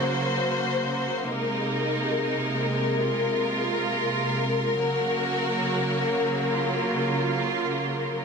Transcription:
0.00 1.23 C#3 medium
0.00 1.23 F#3 medium
0.00 4.73 A#3 medium
0.00 1.23 F#4 medium
0.00 1.25 C5 medium
1.26 4.73 C3 medium
1.26 4.73 G#3 medium
1.26 3.00 D#4 medium
1.26 8.23 A#4 medium
3.01 4.75 F4 medium
4.77 8.24 C#3 medium
4.77 8.24 F#3 medium
4.77 8.24 A#3 medium
4.77 6.50 F#4 medium
6.52 8.25 F4 medium

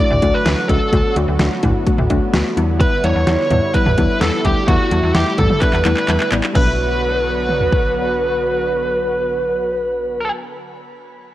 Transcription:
0.00 6.51 D3 medium
0.00 2.53 F#3 medium
0.00 0.18 A3 medium
0.00 0.91 A3 medium
0.00 0.18 D4 medium
0.00 0.18 E4 medium
0.00 2.53 F#4 medium
0.00 0.35 D5 loud
0.11 0.20 D2 loud
0.11 mid tom loud
0.22 0.32 D2 medium
0.22 0.41 A3 loud
0.22 0.41 D4 medium
0.22 0.41 F#4 loud
0.22 kick medium
0.22 closed hi-hat medium
0.34 0.69 B4 medium
0.46 0.55 D2 loud
0.46 0.65 A3 loud
0.46 0.65 D4 medium
0.46 0.65 F#4 loud
0.46 snare loud
0.46 closed hi-hat medium
0.69 0.79 C#2 medium
0.69 0.88 A3 medium
0.69 0.88 D4 medium
0.69 0.88 F#4 medium
0.69 1.13 A4 medium
0.69 kick medium
0.69 closed hi-hat medium
0.93 1.02 D2 loud
0.93 1.12 A3 loud
0.93 4.41 B3 medium
0.93 1.12 D4 medium
0.93 1.12 F#4 loud
0.93 kick loud
0.93 closed hi-hat medium
1.16 1.26 D2 loud
1.16 1.35 A3 medium
1.16 1.35 D4 medium
1.16 1.35 F#4 medium
1.16 closed hi-hat medium
1.28 1.37 D2 loud
1.39 1.49 D2 loud
1.39 1.59 A3 medium
1.39 1.59 D4 medium
1.39 1.59 F#4 loud
1.39 snare loud
1.39 closed hi-hat medium
1.63 1.73 D2 loud
1.63 1.82 A3 medium
1.63 1.82 D4 medium
1.63 1.82 E4 loud
1.63 kick medium
1.63 closed hi-hat medium
1.63 mid tom medium
1.86 2.05 A3 medium
1.86 2.05 D4 medium
1.86 2.05 F#4 loud
1.86 kick medium
1.86 closed hi-hat medium
1.98 2.08 D2 loud
1.98 mid tom loud
2.10 2.20 D2 loud
2.10 2.29 A3 loud
2.10 2.29 D4 loud
2.10 2.29 F#4 loud
2.10 kick medium
2.10 closed hi-hat medium
2.33 2.43 D2 loud
2.33 2.52 A3 loud
2.33 2.52 D4 loud
2.33 2.52 F#4 loud
2.33 snare loud
2.33 closed hi-hat medium
2.57 2.85 E2 loud
2.57 6.51 G3 medium
2.57 2.95 G3 loud
2.57 2.95 B3 medium
2.57 6.51 E4 medium
2.57 2.95 E4 loud
2.57 closed hi-hat medium
2.80 3.05 B4 loud
2.80 kick loud
2.80 closed hi-hat medium
3.04 3.13 E2 loud
3.04 3.23 G3 medium
3.04 3.23 B3 medium
3.04 3.23 E4 medium
3.04 3.76 C#5 loud
3.04 closed hi-hat medium
3.15 3.25 E2 loud
3.27 3.37 E2 loud
3.27 3.46 G3 medium
3.27 3.46 B3 medium
3.27 3.46 E4 medium
3.27 snare loud
3.27 closed hi-hat medium
3.50 3.60 E2 loud
3.50 3.70 G3 medium
3.50 3.70 B3 medium
3.50 3.70 E4 medium
3.50 closed hi-hat medium
3.50 mid tom medium
3.74 3.93 G3 medium
3.74 3.93 B3 medium
3.74 3.93 E4 medium
3.74 4.21 B4 loud
3.74 kick medium
3.74 closed hi-hat medium
3.86 3.95 E2 medium
3.86 mid tom loud
3.97 4.07 E2 loud
3.97 4.16 G3 loud
3.97 4.16 B3 medium
3.97 4.16 E4 loud
3.97 kick medium
3.97 closed hi-hat medium
4.21 4.30 E2 loud
4.21 4.40 G3 loud
4.21 4.40 B3 medium
4.21 4.40 E4 loud
4.21 4.45 A4 loud
4.21 snare loud
4.21 closed hi-hat medium
4.44 4.54 D2 medium
4.44 4.63 G3 medium
4.44 6.53 A3 medium
4.44 4.63 B3 medium
4.44 4.63 E4 medium
4.44 4.66 G4 medium
4.44 kick medium
4.44 closed hi-hat medium
4.68 4.77 E2 loud
4.68 4.87 G3 loud
4.68 4.87 B3 medium
4.68 4.87 E4 loud
4.68 5.14 F#4 medium
4.68 kick loud
4.68 closed hi-hat medium
4.91 5.01 E2 loud
4.91 5.10 G3 medium
4.91 5.10 B3 medium
4.91 5.10 E4 medium
4.91 closed hi-hat medium
5.03 5.13 E2 loud
5.14 5.24 E2 loud
5.14 5.34 G3 medium
5.14 5.34 B3 medium
5.14 5.34 E4 medium
5.14 5.36 G4 medium
5.14 snare loud
5.14 closed hi-hat medium
5.38 5.48 E2 loud
5.38 5.57 G3 medium
5.38 5.57 B3 medium
5.38 5.57 E4 medium
5.38 5.61 A4 medium
5.38 kick medium
5.38 closed hi-hat medium
5.38 mid tom loud
5.50 mid tom loud
5.61 5.80 G3 medium
5.61 5.80 B3 medium
5.61 5.80 D4 medium
5.61 6.28 B4 medium
5.61 kick medium
5.61 clap medium
5.61 closed hi-hat medium
5.73 5.83 E2 loud
5.73 clap medium
5.85 5.95 E2 loud
5.85 6.04 G3 loud
5.85 6.04 B3 medium
5.85 6.04 E4 loud
5.85 clap medium
5.85 closed hi-hat medium
5.97 clap medium
6.08 6.18 E2 loud
6.08 6.27 G3 loud
6.08 6.27 B3 medium
6.08 6.27 E4 loud
6.08 clap medium
6.08 closed hi-hat medium
6.20 clap medium
6.32 6.41 A1 loud
6.32 6.51 G3 medium
6.32 6.51 B3 medium
6.32 6.51 E4 loud
6.32 clap loud
6.32 closed hi-hat medium
6.44 clap loud
6.53 10.31 B1 loud
6.53 10.31 D3 medium
6.53 10.29 F#3 medium
6.53 10.31 F#3 medium
6.53 10.31 B3 medium
6.53 10.31 F#4 medium
6.53 10.31 B4 medium
6.53 kick loud
6.53 crash medium
6.57 10.33 D4 medium
7.49 mid tom medium
7.61 floor tom medium
7.73 kick medium

